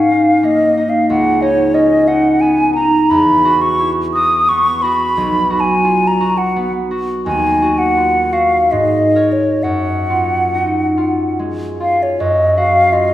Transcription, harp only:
Already playing: G#2 G#3 C#4
0.11 D#4
0.43 A#3
0.77 D#4
1.10 C#2
1.42 D#4
1.74 C#4
2.08 D#4
2.42 B3
2.76 D#4
3.11 E2
3.45 F#4
3.79 E4
4.15 F#4
4.50 B3
4.84 F#4
5.17 B1
5.50 F#4
5.84 F4
6.20 F#4
6.56 B3
6.91 F#4
7.26 D#2
7.62 F#4
7.97 F4
8.32 F#4
8.72 G#2
9.15 A#4 C#5
9.64 F#2
10.10 F4
10.55 D#4
10.97 F4
11.39 G#3
11.80 F4
12.20 F#2
12.58 F#4
12.92 F4

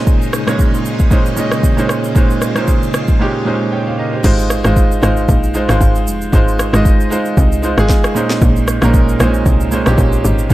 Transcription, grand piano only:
Already playing: A#2 G#3 C#4 D#4 C5
0.47 A#2 G#3 C#4 D#4 C#5
1.10 A#2 G#3 C#4 D#4 C5
1.36 A#2 G#3 C#4 D#4 D#5
1.77 A#2 G#3 C#4 D#4 C5
2.15 A#2 G#3 C#4 D#4 C5
2.55 A#2 G#3 C#4 D#4 C5
3.19 A#2 G#3 C#4 D#4 G4
3.45 A#2 G#3 C#4 D#4 C5
3.72 C#5 G5
3.87 C5 F5
3.99 A#4 D#5
4.13 G4 C5
4.23 G#3 D#4 F4 C5
4.64 G#3 D#4 F4 C5
5.02 G#3 D#4 F4 C5
5.54 G#3 D#4 F4 C5
5.68 G#3 D#4 F4 C5
6.32 G#3 D#4 F4 C5
6.73 G#3 D#4 F4 D#5
7.10 G#3 D#4 F4 C5
7.62 G#3 D#4 F4 C5
7.77 G#3 D#4 F4 G#4
8.15 A#2 G#3 C#4 D#4 C5
8.82 A#2 G#3 C#4 D#4 A#4
9.19 A#2 G#3 C4 D#4 C5
9.27 C#4
9.71 A#2 G#3 C#4 D#4 C5
9.86 A#2 G#3 C4 D#4 G4
9.93 C#4
10.49 A#2 G#3 C#4

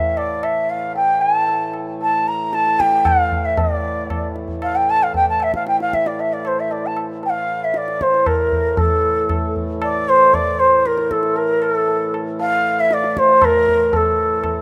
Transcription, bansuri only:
Already playing: E5
0.17 D5
0.43 E5
0.70 F5
0.96 G5
1.21 A5
2.02 A5
2.28 A#5
2.54 A5
2.80 G5
3.06 F5
3.45 E5
3.59 D5
4.63 F5
4.75 G5
4.90 A5
5.03 F5
5.16 G5
5.29 A5
5.43 E5
5.55 F5
5.67 G5
5.81 F5
5.94 E5
6.07 D5
6.20 E5
6.33 D5
6.47 C5
6.60 E5
6.71 D5
6.86 A5
7.25 G5
7.30 F5
7.64 E5
7.77 D5
8.02 C5
8.27 A#4
8.79 A4
9.83 D5
10.09 C5
10.34 D5
10.59 C5
10.86 A#4
11.11 A4
11.37 A#4
11.63 A#4
11.74 A4
12.40 F5
12.80 E5
12.93 D5
13.18 C5
13.44 A#4
13.96 A4

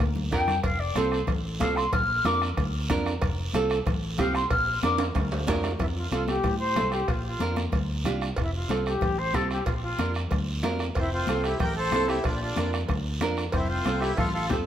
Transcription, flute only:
0.32 G5
0.64 F5
0.80 D5
0.96 C5
1.60 F5
1.76 C6
1.93 F6
2.26 D6
4.19 F5
4.35 C6
4.50 F6
4.83 D6
5.79 E4
5.96 F4
6.12 F4
6.28 G4
6.59 C5
6.93 G4
7.10 F4
7.26 F4
8.39 E4
8.55 F4
8.86 G4
9.19 C5
9.35 A4
9.52 G4
9.66 F4
9.82 F4
10.98 E4
11.13 F4
11.45 G4
11.61 A#4
11.77 C5
12.08 G4
12.26 F4
12.41 F4
13.53 E4
13.68 F4
14.01 G4
14.16 A4
14.32 A4
14.49 G4

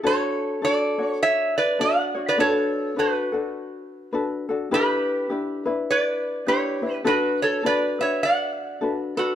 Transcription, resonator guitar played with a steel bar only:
0.07 A4 C#5
0.65 A4 D5
1.07 C#5
1.22 C#5 E5
1.58 B4 D5
1.81 D5 F#5
2.28 B4 D5
2.40 A4 C#5
2.99 F#4 B4
4.74 G4 B4
5.91 B4 D5
6.48 G4 C#5
6.94 B4
7.07 F#4 B4
7.42 A4 C#5
7.66 B4 D5
8.01 C#5 E5
8.23 D5 F#5
9.17 F#4 A4

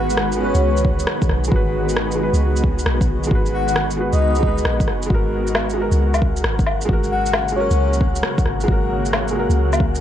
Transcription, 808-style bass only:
Already playing: G#1
0.54 C#2
1.29 B1
1.51 G#1
2.33 C#2
2.86 B1
3.31 G#1
4.13 C#2
4.65 A#1
4.87 F#1
5.10 G#1
5.92 C#2
6.44 G#1
6.89 G#1
7.71 C#2
8.45 G#1
8.68 G#1
9.50 C#2

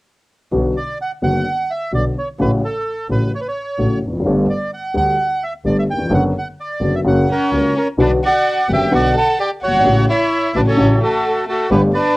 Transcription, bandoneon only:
0.77 D5
1.01 F#5
1.23 F#5
1.71 E5
1.95 D5
2.18 C#5
2.41 B4
2.65 A4
3.11 B4
3.35 C#5
3.41 B4
3.48 C#5
4.50 D5
4.74 F#5
4.97 F#5
5.44 E5
5.66 D5
5.79 E5
5.91 G5
6.14 F#5
6.38 F#5
6.60 D5
6.95 E5
7.07 F#5
7.32 A#4 C#5
7.78 A#4 C#5
8.01 B4 D5
8.25 D5 F#5
8.73 E5 G5
8.95 D5 F#5
9.17 F#5 A5
9.40 D5 G5
9.63 C#5 F#5
10.10 C#5 E5
10.56 B4 D5
10.68 A4 C#5
11.03 F#4 A4
11.49 F#4 A4
11.71 G4 B4
11.94 B4 D5

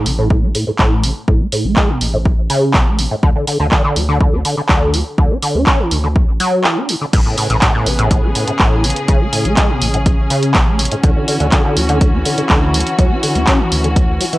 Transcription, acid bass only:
0.06 C#3
0.18 A2
0.30 A2
0.43 A3
0.55 A2
0.67 A2
0.79 A2
1.04 C#3
1.28 A2
1.40 A3
1.52 A2
1.65 A3
1.77 G#3
1.89 B2
2.01 A2
2.13 A2
2.50 C#3
2.74 B2
2.87 A3
2.99 A2
3.11 A2
3.23 D3
3.35 D3
3.47 D3
3.60 D3
3.72 D3
3.84 D3
3.96 F#3
4.09 D3
4.21 D3
4.33 D4
4.45 D3
4.57 D3
4.69 D3
4.94 F#3
5.18 D3
5.30 D4
5.42 D3
5.55 D4
5.67 C#4
5.79 E3
5.91 D3
6.04 D3
6.40 F#3
6.64 E3
6.77 D4
6.89 D3
7.01 D3
7.13 A2
7.26 A2
7.38 A2
7.50 A2
7.62 A2
7.74 A2
7.86 C#3
7.99 A2
8.11 A2
8.23 A3
8.35 A2
8.48 A2
8.60 A2
8.84 C#3
9.08 C#3
9.21 A3
9.33 A2
9.45 A3
9.57 G#3
9.70 B2
9.82 A2
9.94 A2
10.30 C#3
10.55 B2
10.67 A3
10.79 A2
10.91 A2
11.04 D3
11.16 D3
11.28 D3
11.40 D3
11.52 D3
11.65 D3
11.77 F#3
11.89 D3
12.01 D3
12.13 D4
12.25 D3
12.38 D3
12.50 D3
12.74 F#3
12.99 F#3
13.11 D4
13.23 D3
13.35 D4
13.47 C#4
13.60 E3
13.72 D3
13.84 D3
14.21 F#3
14.33 E3

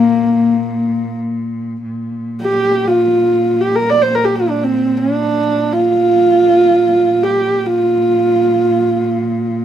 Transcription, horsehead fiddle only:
Already playing: A#3
2.42 G4
2.87 F4
3.61 G4
3.76 A#4
3.90 D5
4.02 C5
4.15 A#4
4.25 G4
4.36 F4
4.50 D4
4.63 C4
4.97 D4
5.73 F4
7.23 G4
7.66 F4

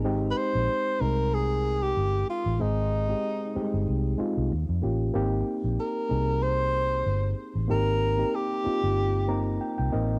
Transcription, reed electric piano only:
0.04 G#3 C4 D#4 G4
1.00 G#3 C4 D#4 A#4
2.59 G#3 C4 D#4 G#4
3.08 G#3 C4 D#4 G4
3.55 G3 C4 D#4 G4
3.62 G#3
4.18 G#3 C4 D#4 F4
4.82 A#3 C#4 F4 G4
5.14 A#3 C4 D#4 G4
6.09 A#3 C4 D#4 G#4
7.68 A#3 C4 D#4 G4
8.18 A#3 C4 D#4 G4
8.64 A#3 C4 D#4 F4
9.28 A#3 C4 D#4 A#4 A#5
9.61 G5
9.78 G5
9.92 A#3 C4 D#4 A#4 D#5

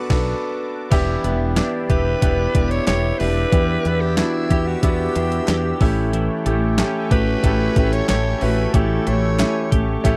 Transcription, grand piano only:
Already playing: B3 D4 F#4 A4
0.10 B3 D4 F#4 A4
0.91 B3 D4 E4 G4
1.24 B3 D4 E4 G4
1.56 B3 D4 E4 G4
1.88 B3 D4 E4 G4
2.21 B3 D4 E4 G4
2.54 B3 D4 E4 G4
2.86 B3 D4 E4 G4
3.20 B3 D4 E4 G4
3.52 B3 D4 E4 G4
3.85 B3 D4 E4 G4
4.17 B3 D4 E4 F#4
4.50 B3 D4 E4 G4
4.82 B3 D4 E4 F#4
5.15 B3 D4 E4 G4
5.48 B3 D4 E4 G4
5.80 A3 C#4 E4 G4
6.46 A3 C#4 E4 G4
6.78 A3 C#4 E4 G4
7.11 A3 C#4 E4 F#4
7.44 A3 C#4 E4 G4
7.76 A3 C#4 E4 G4
8.09 A3 C#4 E4 A4
8.41 A3 C#4 E4 F#4
8.73 A3 C#4 E4 G4
9.07 A3 C#4 E4 G4
9.39 A3 C#4 E4 G4
9.71 A3 C#4 E4 G4
10.04 A3 C#4 E4 G4

